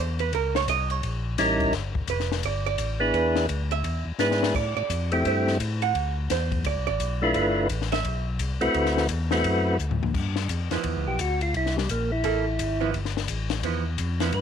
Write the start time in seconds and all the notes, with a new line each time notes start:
Already playing: E2
0.00 C5
0.19 B4, ride
0.33 C#2 A#4, kick, ride
0.55 C#5, snare
0.68 C2 D#5, kick, hi-hat pedal, ride
0.90 C#5, ride
1.03 A#1, kick, ride
1.38 A1 G3 C#4 D#4 E4 A#4, kick, snare, hi-hat pedal, ride
1.60 kick, ride
1.73 G1, kick, snare, ride
1.95 G1, kick
2.08 F1 B4, kick, hi-hat pedal, ride
2.20 snare
2.32 snare
2.43 G1 D5, kick, ride
2.66 D5
2.78 A1, kick, hi-hat pedal, ride
3.00 B3 D4 E4 G#4 B4
3.14 E2 B4, kick, ride
3.36 snare
3.49 D2, kick, hi-hat pedal, ride
3.71 E5, ride
3.84 E2, kick, ride
4.06 E2
4.19 G#2 B3 D4 E4 G#4 B4, snare, hi-hat pedal
4.31 snare
4.43 snare
4.54 A2 D5, kick, crash
4.76 A2 D5
4.90 F2, kick, hi-hat pedal, ride
5.12 A3 C4 E4 G4, ride
5.25 G2 C5, kick, ride
5.48 snare
5.60 A2, kick, hi-hat pedal, ride
5.82 F#5, ride
5.95 D2, kick, ride
6.30 E2 C5, kick, snare, hi-hat pedal, ride
6.52 kick, ride
6.64 D2 D5, kick, ride
6.77 C2
6.87 A1 D5
7.00 B1, kick, hi-hat pedal, ride
7.22 A3 D4 E4 F4 B4
7.34 G1 B4, kick, ride
7.69 A1, kick, hi-hat pedal, ride
7.82 snare
7.92 E5, snare, ride
8.05 B1, kick, ride
8.39 C2, kick, hi-hat pedal, ride
8.61 C2 A3 C4 E4 F#4 B4, ride
8.74 D2, kick, ride
8.86 snare
8.97 snare
9.09 E2, kick, hi-hat pedal, ride
9.31 A3 C4 E4 F#4 B4, snare
9.44 F#2, kick, ride
9.79 D2, hi-hat pedal
9.91 floor tom
10.03 floor tom
10.14 G2, kick, crash
10.36 snare
10.49 F2, kick, hi-hat pedal, ride
10.71 F2 F3 B3 E4, snare, ride
10.84 E2, kick, ride
10.96 D2
11.07 B1 G4
11.19 D2 F#4, kick, hi-hat pedal, ride
11.41 F4, ride
11.54 C2 E4, kick, ride
11.66 snare
11.76 G3, snare
11.89 A#1 A#3, kick, hi-hat pedal, ride
12.12 E4
12.24 A1 A#3 E4 A4, kick, ride
12.59 G#1, kick, hi-hat pedal, ride
12.80 F3 B3 E4
12.94 G1, kick, ride
13.05 snare
13.17 snare
13.28 A1, kick, hi-hat pedal, ride
13.50 snare, ride
13.63 E2 F3 B3 E4, kick, ride
13.98 F2, kick, hi-hat pedal, ride
14.20 F3 B3 E4, snare, ride
14.32 G2 B4, kick, ride